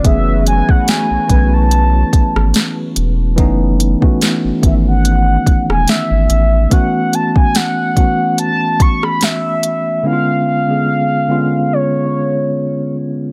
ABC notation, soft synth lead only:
X:1
M:4/4
L:1/16
Q:"Swing 16ths" 1/4=72
K:F#dor
V:1 name="Soft synth lead"
e2 g f g3 a6 z3 | z6 e f4 g e4 | f2 a g f4 a2 c' b e4 | ^e8 c6 z2 |]